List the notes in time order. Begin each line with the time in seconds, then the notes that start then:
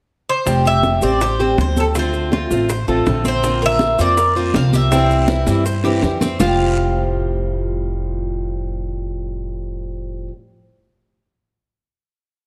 0.29 C5
0.45 F1 F3 G3 C4 G4, high bongo, high conga, maracas
0.65 G4 E5, high conga, maracas
0.83 G3 C4 G4, high bongo, high conga, maracas
1.01 A1 G3 C4 G4 C5 D5, high conga, maracas
1.21 G4 C5, muted steel-string acoustic guitar stroke, high bongo, high conga, maracas
1.39 G3 C4 G4 C5, high conga, maracas
1.58 D2 F3 G3 C4 G4 C5, high bongo, low bongo, high conga, maracas
1.76 A4, high conga, maracas
1.95 D3 A3 C4 F4 C5, high bongo, high conga, maracas
2.13 high bongo, high conga, maracas
2.32 D3 A3 C4 F4, high bongo, high conga, maracas
2.50 A1 A3 C4 F4, high bongo, high conga, maracas
2.69 C5, muted steel-string acoustic guitar stroke, high bongo, high conga, maracas
2.88 A1 A3 C4 F4 A4, high conga, maracas
3.06 A#1 D3 A3 C4 F4, high bongo, low bongo, high conga, maracas
3.25 C4 C5, high bongo, high conga, maracas
3.43 D3 A#3 C4 F4, high bongo, high conga, long guiro, maracas
3.61 A#4, high conga, maracas
3.66 E5
3.79 D3 A#3 C4 F4, high bongo, high conga, short guiro, maracas
3.98 F2 A#3 C4 F4 C5 D5, high conga, short guiro, maracas
4.17 A#4, muted steel-string acoustic guitar stroke, high bongo, high conga, long guiro, maracas
4.35 A#3 C4 F4 C5, high conga, maracas
4.54 C2 D3 A#3 C4 F4 F5, high bongo, low bongo, high conga, short guiro, maracas
4.73 G4 E5, high conga, short guiro, maracas
4.91 C3 E3 G3 C4 E4, high bongo, high conga, long guiro, maracas
5.10 high bongo, high conga, maracas
5.28 E3 G3 C4 E4, high bongo, high conga, short guiro, maracas
5.46 G2 E3 G3 C4 E4, high bongo, high conga, short guiro, maracas
5.64 C5, muted steel-string acoustic guitar stroke, high conga, long guiro, maracas
5.84 E3 G3 C4 E4 G4, low bongo, high conga, maracas
6.02 F2 E3 G3 C4 E4, low bongo, high conga, short guiro, maracas
6.21 C4, low bongo, high conga, short guiro, maracas
6.39 F1 F2 A2 F3 G3 C4 F4 G4 C5 F5, low bongo, low conga, long guiro, maracas